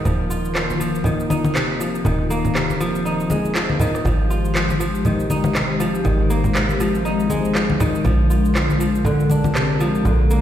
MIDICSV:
0, 0, Header, 1, 5, 480
1, 0, Start_track
1, 0, Tempo, 500000
1, 49, Time_signature, 4, 2, 24, 8
1, 9997, End_track
2, 0, Start_track
2, 0, Title_t, "Analog synth pad"
2, 0, Program_c, 0, 89
2, 0, Note_on_c, 0, 70, 84
2, 46, Note_on_c, 0, 65, 71
2, 47, Note_on_c, 0, 58, 70
2, 48, Note_on_c, 0, 51, 78
2, 3849, Note_off_c, 0, 65, 0
2, 3850, Note_off_c, 0, 51, 0
2, 3850, Note_off_c, 0, 58, 0
2, 3851, Note_off_c, 0, 70, 0
2, 3884, Note_on_c, 0, 51, 77
2, 3885, Note_on_c, 0, 67, 72
2, 3885, Note_on_c, 0, 72, 86
2, 3886, Note_on_c, 0, 56, 71
2, 7688, Note_off_c, 0, 51, 0
2, 7689, Note_off_c, 0, 67, 0
2, 7689, Note_off_c, 0, 72, 0
2, 7729, Note_on_c, 0, 65, 71
2, 7731, Note_on_c, 0, 50, 76
2, 7731, Note_on_c, 0, 70, 86
2, 9997, Note_off_c, 0, 50, 0
2, 9997, Note_off_c, 0, 56, 0
2, 9997, Note_off_c, 0, 65, 0
2, 9997, Note_off_c, 0, 70, 0
2, 9997, End_track
3, 0, Start_track
3, 0, Title_t, "Kora"
3, 0, Program_c, 1, 46
3, 0, Note_on_c, 1, 51, 88
3, 0, Note_on_c, 1, 58, 86
3, 0, Note_on_c, 1, 63, 71
3, 49, Note_on_c, 1, 53, 74
3, 97, Note_off_c, 1, 51, 0
3, 220, Note_off_c, 1, 58, 0
3, 290, Note_on_c, 1, 65, 67
3, 514, Note_off_c, 1, 53, 0
3, 526, Note_on_c, 1, 53, 72
3, 650, Note_off_c, 1, 63, 0
3, 756, Note_off_c, 1, 53, 0
3, 768, Note_on_c, 1, 53, 70
3, 1007, Note_on_c, 1, 51, 73
3, 1057, Note_off_c, 1, 53, 0
3, 1247, Note_on_c, 1, 63, 65
3, 1486, Note_on_c, 1, 48, 71
3, 1537, Note_off_c, 1, 51, 0
3, 1728, Note_on_c, 1, 53, 65
3, 1743, Note_off_c, 1, 65, 0
3, 1969, Note_on_c, 1, 51, 74
3, 2017, Note_off_c, 1, 48, 0
3, 2017, Note_off_c, 1, 53, 0
3, 2211, Note_on_c, 1, 58, 91
3, 2450, Note_on_c, 1, 48, 75
3, 2497, Note_off_c, 1, 51, 0
3, 2693, Note_on_c, 1, 53, 91
3, 2804, Note_off_c, 1, 63, 0
3, 2932, Note_on_c, 1, 63, 73
3, 3173, Note_on_c, 1, 56, 66
3, 3400, Note_off_c, 1, 53, 0
3, 3411, Note_on_c, 1, 53, 71
3, 3648, Note_on_c, 1, 51, 87
3, 3697, Note_off_c, 1, 48, 0
3, 3697, Note_off_c, 1, 53, 0
3, 3697, Note_off_c, 1, 56, 0
3, 3890, Note_on_c, 1, 53, 71
3, 3937, Note_off_c, 1, 51, 0
3, 4063, Note_off_c, 1, 58, 0
3, 4131, Note_on_c, 1, 65, 70
3, 4358, Note_off_c, 1, 53, 0
3, 4370, Note_on_c, 1, 53, 72
3, 4489, Note_off_c, 1, 63, 0
3, 4599, Note_off_c, 1, 53, 0
3, 4610, Note_on_c, 1, 53, 69
3, 4852, Note_on_c, 1, 51, 71
3, 4897, Note_off_c, 1, 53, 0
3, 5091, Note_on_c, 1, 63, 68
3, 5332, Note_on_c, 1, 48, 73
3, 5377, Note_off_c, 1, 51, 0
3, 5570, Note_on_c, 1, 53, 88
3, 5584, Note_off_c, 1, 65, 0
3, 5808, Note_on_c, 1, 51, 72
3, 5857, Note_off_c, 1, 48, 0
3, 5857, Note_off_c, 1, 53, 0
3, 6048, Note_on_c, 1, 58, 94
3, 6289, Note_on_c, 1, 48, 74
3, 6337, Note_off_c, 1, 51, 0
3, 6530, Note_on_c, 1, 53, 94
3, 6648, Note_off_c, 1, 63, 0
3, 6768, Note_on_c, 1, 63, 75
3, 7008, Note_on_c, 1, 56, 69
3, 7237, Note_off_c, 1, 53, 0
3, 7249, Note_on_c, 1, 53, 73
3, 7490, Note_on_c, 1, 51, 91
3, 7537, Note_off_c, 1, 48, 0
3, 7537, Note_off_c, 1, 53, 0
3, 7537, Note_off_c, 1, 56, 0
3, 7731, Note_on_c, 1, 53, 76
3, 7777, Note_off_c, 1, 51, 0
3, 7900, Note_off_c, 1, 58, 0
3, 7970, Note_on_c, 1, 65, 69
3, 8198, Note_off_c, 1, 53, 0
3, 8209, Note_on_c, 1, 53, 77
3, 8326, Note_off_c, 1, 63, 0
3, 8439, Note_off_c, 1, 53, 0
3, 8450, Note_on_c, 1, 53, 70
3, 8689, Note_on_c, 1, 50, 71
3, 8737, Note_off_c, 1, 53, 0
3, 8933, Note_on_c, 1, 62, 66
3, 9172, Note_on_c, 1, 48, 77
3, 9217, Note_off_c, 1, 50, 0
3, 9413, Note_on_c, 1, 53, 94
3, 9423, Note_off_c, 1, 65, 0
3, 9653, Note_on_c, 1, 50, 74
3, 9697, Note_off_c, 1, 48, 0
3, 9697, Note_off_c, 1, 53, 0
3, 9895, Note_on_c, 1, 58, 90
3, 9997, Note_off_c, 1, 50, 0
3, 9997, Note_off_c, 1, 58, 0
3, 9997, Note_off_c, 1, 62, 0
3, 9997, End_track
4, 0, Start_track
4, 0, Title_t, "FM bass"
4, 0, Program_c, 2, 39
4, 51, Note_on_c, 2, 27, 82
4, 1950, Note_off_c, 2, 27, 0
4, 1969, Note_on_c, 2, 27, 82
4, 3869, Note_off_c, 2, 27, 0
4, 3888, Note_on_c, 2, 32, 81
4, 5788, Note_off_c, 2, 32, 0
4, 5807, Note_on_c, 2, 32, 85
4, 7708, Note_off_c, 2, 32, 0
4, 7727, Note_on_c, 2, 34, 81
4, 9628, Note_off_c, 2, 34, 0
4, 9650, Note_on_c, 2, 34, 82
4, 9997, Note_off_c, 2, 34, 0
4, 9997, End_track
5, 0, Start_track
5, 0, Title_t, "Drums"
5, 52, Note_on_c, 9, 63, 64
5, 52, Note_on_c, 9, 64, 87
5, 52, Note_on_c, 9, 82, 50
5, 148, Note_off_c, 9, 63, 0
5, 148, Note_off_c, 9, 64, 0
5, 148, Note_off_c, 9, 82, 0
5, 293, Note_on_c, 9, 82, 84
5, 389, Note_off_c, 9, 82, 0
5, 432, Note_on_c, 9, 82, 36
5, 528, Note_off_c, 9, 82, 0
5, 530, Note_on_c, 9, 37, 94
5, 530, Note_on_c, 9, 39, 86
5, 533, Note_on_c, 9, 82, 48
5, 626, Note_off_c, 9, 37, 0
5, 626, Note_off_c, 9, 39, 0
5, 629, Note_off_c, 9, 82, 0
5, 673, Note_on_c, 9, 82, 32
5, 677, Note_on_c, 9, 63, 57
5, 769, Note_off_c, 9, 82, 0
5, 773, Note_off_c, 9, 63, 0
5, 775, Note_on_c, 9, 82, 87
5, 871, Note_off_c, 9, 82, 0
5, 913, Note_on_c, 9, 82, 37
5, 999, Note_on_c, 9, 64, 77
5, 1009, Note_off_c, 9, 82, 0
5, 1010, Note_on_c, 9, 63, 57
5, 1013, Note_on_c, 9, 82, 49
5, 1095, Note_off_c, 9, 64, 0
5, 1106, Note_off_c, 9, 63, 0
5, 1109, Note_off_c, 9, 82, 0
5, 1152, Note_on_c, 9, 82, 34
5, 1248, Note_off_c, 9, 82, 0
5, 1250, Note_on_c, 9, 63, 91
5, 1255, Note_on_c, 9, 82, 82
5, 1346, Note_off_c, 9, 63, 0
5, 1351, Note_off_c, 9, 82, 0
5, 1385, Note_on_c, 9, 63, 98
5, 1393, Note_on_c, 9, 82, 35
5, 1481, Note_off_c, 9, 63, 0
5, 1489, Note_off_c, 9, 82, 0
5, 1491, Note_on_c, 9, 37, 96
5, 1491, Note_on_c, 9, 39, 87
5, 1494, Note_on_c, 9, 82, 50
5, 1587, Note_off_c, 9, 37, 0
5, 1587, Note_off_c, 9, 39, 0
5, 1590, Note_off_c, 9, 82, 0
5, 1734, Note_on_c, 9, 82, 85
5, 1830, Note_off_c, 9, 82, 0
5, 1872, Note_on_c, 9, 82, 36
5, 1967, Note_on_c, 9, 63, 62
5, 1967, Note_on_c, 9, 64, 98
5, 1968, Note_off_c, 9, 82, 0
5, 1973, Note_on_c, 9, 82, 48
5, 2063, Note_off_c, 9, 63, 0
5, 2063, Note_off_c, 9, 64, 0
5, 2069, Note_off_c, 9, 82, 0
5, 2213, Note_on_c, 9, 82, 81
5, 2309, Note_off_c, 9, 82, 0
5, 2349, Note_on_c, 9, 64, 69
5, 2352, Note_on_c, 9, 82, 35
5, 2445, Note_off_c, 9, 64, 0
5, 2448, Note_off_c, 9, 82, 0
5, 2451, Note_on_c, 9, 37, 92
5, 2451, Note_on_c, 9, 39, 87
5, 2454, Note_on_c, 9, 82, 49
5, 2547, Note_off_c, 9, 37, 0
5, 2547, Note_off_c, 9, 39, 0
5, 2550, Note_off_c, 9, 82, 0
5, 2592, Note_on_c, 9, 63, 56
5, 2594, Note_on_c, 9, 82, 33
5, 2688, Note_off_c, 9, 63, 0
5, 2690, Note_off_c, 9, 82, 0
5, 2695, Note_on_c, 9, 82, 85
5, 2791, Note_off_c, 9, 82, 0
5, 2834, Note_on_c, 9, 82, 37
5, 2930, Note_off_c, 9, 82, 0
5, 2936, Note_on_c, 9, 82, 49
5, 3032, Note_off_c, 9, 82, 0
5, 3073, Note_on_c, 9, 82, 33
5, 3166, Note_on_c, 9, 63, 86
5, 3169, Note_off_c, 9, 82, 0
5, 3173, Note_on_c, 9, 82, 86
5, 3262, Note_off_c, 9, 63, 0
5, 3269, Note_off_c, 9, 82, 0
5, 3312, Note_on_c, 9, 82, 36
5, 3408, Note_off_c, 9, 82, 0
5, 3410, Note_on_c, 9, 37, 92
5, 3410, Note_on_c, 9, 39, 89
5, 3414, Note_on_c, 9, 82, 49
5, 3506, Note_off_c, 9, 37, 0
5, 3506, Note_off_c, 9, 39, 0
5, 3510, Note_off_c, 9, 82, 0
5, 3549, Note_on_c, 9, 63, 78
5, 3644, Note_on_c, 9, 64, 87
5, 3645, Note_off_c, 9, 63, 0
5, 3654, Note_on_c, 9, 82, 83
5, 3740, Note_off_c, 9, 64, 0
5, 3750, Note_off_c, 9, 82, 0
5, 3790, Note_on_c, 9, 37, 51
5, 3793, Note_on_c, 9, 82, 36
5, 3886, Note_off_c, 9, 37, 0
5, 3886, Note_on_c, 9, 63, 58
5, 3889, Note_off_c, 9, 82, 0
5, 3892, Note_on_c, 9, 64, 87
5, 3895, Note_on_c, 9, 82, 46
5, 3982, Note_off_c, 9, 63, 0
5, 3988, Note_off_c, 9, 64, 0
5, 3991, Note_off_c, 9, 82, 0
5, 4135, Note_on_c, 9, 82, 79
5, 4231, Note_off_c, 9, 82, 0
5, 4272, Note_on_c, 9, 82, 35
5, 4368, Note_off_c, 9, 82, 0
5, 4371, Note_on_c, 9, 37, 85
5, 4371, Note_on_c, 9, 39, 89
5, 4374, Note_on_c, 9, 82, 48
5, 4467, Note_off_c, 9, 37, 0
5, 4467, Note_off_c, 9, 39, 0
5, 4470, Note_off_c, 9, 82, 0
5, 4501, Note_on_c, 9, 63, 64
5, 4513, Note_on_c, 9, 82, 33
5, 4597, Note_off_c, 9, 63, 0
5, 4609, Note_off_c, 9, 82, 0
5, 4613, Note_on_c, 9, 82, 84
5, 4709, Note_off_c, 9, 82, 0
5, 4750, Note_on_c, 9, 82, 35
5, 4846, Note_off_c, 9, 82, 0
5, 4847, Note_on_c, 9, 64, 74
5, 4849, Note_on_c, 9, 63, 54
5, 4851, Note_on_c, 9, 82, 48
5, 4943, Note_off_c, 9, 64, 0
5, 4945, Note_off_c, 9, 63, 0
5, 4947, Note_off_c, 9, 82, 0
5, 4990, Note_on_c, 9, 82, 33
5, 5086, Note_off_c, 9, 82, 0
5, 5088, Note_on_c, 9, 63, 81
5, 5091, Note_on_c, 9, 82, 84
5, 5184, Note_off_c, 9, 63, 0
5, 5187, Note_off_c, 9, 82, 0
5, 5221, Note_on_c, 9, 63, 98
5, 5231, Note_on_c, 9, 82, 35
5, 5317, Note_off_c, 9, 63, 0
5, 5327, Note_off_c, 9, 82, 0
5, 5328, Note_on_c, 9, 37, 90
5, 5328, Note_on_c, 9, 39, 92
5, 5331, Note_on_c, 9, 82, 47
5, 5424, Note_off_c, 9, 37, 0
5, 5424, Note_off_c, 9, 39, 0
5, 5427, Note_off_c, 9, 82, 0
5, 5571, Note_on_c, 9, 82, 82
5, 5667, Note_off_c, 9, 82, 0
5, 5709, Note_on_c, 9, 82, 36
5, 5801, Note_on_c, 9, 63, 55
5, 5805, Note_off_c, 9, 82, 0
5, 5805, Note_on_c, 9, 64, 84
5, 5811, Note_on_c, 9, 82, 46
5, 5897, Note_off_c, 9, 63, 0
5, 5901, Note_off_c, 9, 64, 0
5, 5907, Note_off_c, 9, 82, 0
5, 6051, Note_on_c, 9, 82, 80
5, 6147, Note_off_c, 9, 82, 0
5, 6183, Note_on_c, 9, 64, 69
5, 6189, Note_on_c, 9, 82, 35
5, 6279, Note_off_c, 9, 64, 0
5, 6285, Note_off_c, 9, 82, 0
5, 6288, Note_on_c, 9, 37, 89
5, 6288, Note_on_c, 9, 39, 96
5, 6291, Note_on_c, 9, 82, 46
5, 6384, Note_off_c, 9, 37, 0
5, 6384, Note_off_c, 9, 39, 0
5, 6387, Note_off_c, 9, 82, 0
5, 6422, Note_on_c, 9, 63, 55
5, 6431, Note_on_c, 9, 82, 31
5, 6518, Note_off_c, 9, 63, 0
5, 6527, Note_off_c, 9, 82, 0
5, 6532, Note_on_c, 9, 82, 79
5, 6628, Note_off_c, 9, 82, 0
5, 6671, Note_on_c, 9, 82, 35
5, 6767, Note_off_c, 9, 82, 0
5, 6772, Note_on_c, 9, 82, 44
5, 6868, Note_off_c, 9, 82, 0
5, 6911, Note_on_c, 9, 82, 33
5, 7007, Note_off_c, 9, 82, 0
5, 7007, Note_on_c, 9, 63, 75
5, 7010, Note_on_c, 9, 82, 78
5, 7103, Note_off_c, 9, 63, 0
5, 7106, Note_off_c, 9, 82, 0
5, 7151, Note_on_c, 9, 82, 36
5, 7247, Note_off_c, 9, 82, 0
5, 7249, Note_on_c, 9, 37, 93
5, 7249, Note_on_c, 9, 39, 96
5, 7252, Note_on_c, 9, 82, 45
5, 7345, Note_off_c, 9, 37, 0
5, 7345, Note_off_c, 9, 39, 0
5, 7348, Note_off_c, 9, 82, 0
5, 7389, Note_on_c, 9, 63, 88
5, 7485, Note_off_c, 9, 63, 0
5, 7491, Note_on_c, 9, 64, 99
5, 7492, Note_on_c, 9, 82, 79
5, 7587, Note_off_c, 9, 64, 0
5, 7588, Note_off_c, 9, 82, 0
5, 7633, Note_on_c, 9, 82, 34
5, 7724, Note_on_c, 9, 64, 87
5, 7729, Note_off_c, 9, 82, 0
5, 7731, Note_on_c, 9, 63, 54
5, 7733, Note_on_c, 9, 82, 45
5, 7820, Note_off_c, 9, 64, 0
5, 7827, Note_off_c, 9, 63, 0
5, 7829, Note_off_c, 9, 82, 0
5, 7973, Note_on_c, 9, 82, 80
5, 8069, Note_off_c, 9, 82, 0
5, 8114, Note_on_c, 9, 82, 34
5, 8210, Note_off_c, 9, 82, 0
5, 8212, Note_on_c, 9, 37, 92
5, 8212, Note_on_c, 9, 39, 94
5, 8215, Note_on_c, 9, 82, 45
5, 8308, Note_off_c, 9, 37, 0
5, 8308, Note_off_c, 9, 39, 0
5, 8311, Note_off_c, 9, 82, 0
5, 8348, Note_on_c, 9, 63, 58
5, 8353, Note_on_c, 9, 82, 31
5, 8444, Note_off_c, 9, 63, 0
5, 8449, Note_off_c, 9, 82, 0
5, 8453, Note_on_c, 9, 82, 80
5, 8549, Note_off_c, 9, 82, 0
5, 8593, Note_on_c, 9, 82, 35
5, 8684, Note_on_c, 9, 64, 75
5, 8688, Note_on_c, 9, 63, 57
5, 8689, Note_off_c, 9, 82, 0
5, 8694, Note_on_c, 9, 82, 45
5, 8780, Note_off_c, 9, 64, 0
5, 8784, Note_off_c, 9, 63, 0
5, 8790, Note_off_c, 9, 82, 0
5, 8832, Note_on_c, 9, 82, 31
5, 8924, Note_on_c, 9, 63, 77
5, 8928, Note_off_c, 9, 82, 0
5, 8933, Note_on_c, 9, 82, 79
5, 9020, Note_off_c, 9, 63, 0
5, 9029, Note_off_c, 9, 82, 0
5, 9065, Note_on_c, 9, 63, 94
5, 9072, Note_on_c, 9, 82, 34
5, 9161, Note_off_c, 9, 63, 0
5, 9168, Note_off_c, 9, 82, 0
5, 9171, Note_on_c, 9, 37, 94
5, 9171, Note_on_c, 9, 39, 97
5, 9174, Note_on_c, 9, 82, 45
5, 9267, Note_off_c, 9, 37, 0
5, 9267, Note_off_c, 9, 39, 0
5, 9270, Note_off_c, 9, 82, 0
5, 9413, Note_on_c, 9, 82, 78
5, 9509, Note_off_c, 9, 82, 0
5, 9552, Note_on_c, 9, 82, 33
5, 9648, Note_off_c, 9, 82, 0
5, 9650, Note_on_c, 9, 64, 92
5, 9652, Note_on_c, 9, 63, 62
5, 9654, Note_on_c, 9, 82, 47
5, 9746, Note_off_c, 9, 64, 0
5, 9748, Note_off_c, 9, 63, 0
5, 9750, Note_off_c, 9, 82, 0
5, 9893, Note_on_c, 9, 82, 80
5, 9989, Note_off_c, 9, 82, 0
5, 9997, End_track
0, 0, End_of_file